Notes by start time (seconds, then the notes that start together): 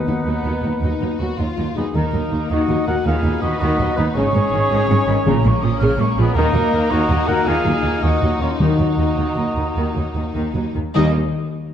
Already playing: D#3 B3 D#4 B4 F#5
0.07 D#2 F#3 D#4
0.26 D#2 F#3 B3 D#4
0.45 D#2 F#3 D#4
0.63 D#2 F#3 D#4
0.82 D#2 F#3 D#4
1.01 D#2 F#3 D#4
1.20 D#2 F#3 D#4 F#4
1.37 D#2 F#3 D#4 F4
1.57 D#2 F#3 D#4
1.75 D#2 F#3 G#3 B3 D#4 G#4
1.93 D#2 D#3 A#3 D#4 A#4 A#5
2.13 D#2 F#3
2.31 D#2 D#3
2.50 D#2 D#3 D#4 F#4 D#5 F#5
2.69 D#2 F#3
2.87 D#2 D#3 F#4 A#4 F#5
3.05 D#2 D#3 B3 F4 G#4 F5 B5
3.24 D#2 F#3
3.42 D#2 D#3 D#4 F#4 D#5
3.59 D#2 D#3 D#4 F#4 D#5
3.79 D#2 F#3
3.96 D#2 D#3 B3 D#4 B4
4.14 G#1 G#2 C#3 C#4 G#4 C#5 C#6
4.18 C#5
4.34 G#1 G#2 G#3
4.53 G#1 G#2 D#3
4.70 G#1 G#2 C#3 D#6
4.89 G#1 G#2 G#3 C#6
5.07 G#1 G#2 D#3 B5
5.26 A#1 A#2 C#3 A#3 C#4 A#5
5.44 A#1 A#2 G#3 C#6
5.62 A#1 A#2 F3 D#6
5.80 A#1 A#2 C#3 F6
5.99 A#1 A#2 G#3 C#6
6.16 A#1 A#2 F3 G#3 B3 G#4 B5
6.34 D#2 D#3 A#3 D#4 A#4 A#5
6.54 D#2 F#3
6.72 D#2 D#3
6.90 D#2 D#3 D#4 F#4 D#5
7.08 D#2 F#3
7.27 D#2 D#3 F#4 A#4 F#5
7.46 D#2 D#3 F4 G#4 F5 G#5
7.65 D#2 F#3
7.83 D#2 D#3
8.02 D#2 D#3 D#4 F#4 D#5 F#5
8.22 D#2 F#3
8.40 D#2 D#3 C#4 F4 C#5
8.59 D#2 D#3 A#3 D#4 F#4 D#5 A#5
8.79 D#2 F#3
8.98 D#2 D#3
9.16 D#2 D#3
9.36 D#2 F#3
9.57 D#2 D#3
9.76 D#2 D#3
9.96 D#2 F#3
10.15 D#2 D#3
10.35 D#2 D#3
10.54 D#2 F#3
10.75 D#2 D#3
10.94 D#2 D#3 G3 A#3 D#4 D#5